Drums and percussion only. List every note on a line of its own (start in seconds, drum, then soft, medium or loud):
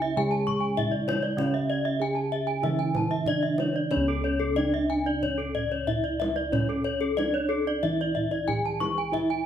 0.03 kendang slap soft
0.33 kendang slap soft
0.48 kendang low medium
0.78 kendang low medium
1.09 kendang high medium
1.24 kendang slap soft
1.38 kendang high medium
1.38 kendang low medium
1.54 kendang slap soft
1.85 kendang slap soft
2.16 kendang slap soft
2.47 kendang slap soft
2.63 kendang high medium
2.79 kendang slap soft
2.95 kendang high medium
2.95 kendang low medium
3.10 kendang slap soft
3.26 kendang low medium
3.42 kendang slap soft
3.58 kendang high medium
3.74 kendang slap soft
3.91 kendang low medium
4.08 kendang slap soft
4.41 kendang slap soft
4.57 kendang high soft
4.73 kendang slap soft
5.06 kendang slap soft
5.23 kendang low medium
5.39 kendang slap soft
5.56 kendang low soft
5.88 kendang low medium
6.05 kendang slap soft
6.22 kendang high medium
6.38 kendang slap soft
6.53 kendang high medium
6.53 kendang low medium
6.70 kendang slap soft
7.02 kendang slap soft
7.18 kendang high medium
7.36 kendang slap soft
7.68 kendang slap soft
7.84 kendang low medium
8.01 kendang slap soft
8.16 kendang low soft
8.49 kendang low medium
8.65 kendang slap soft
8.81 kendang high medium
8.98 kendang slap soft
9.14 kendang low medium
9.30 kendang slap soft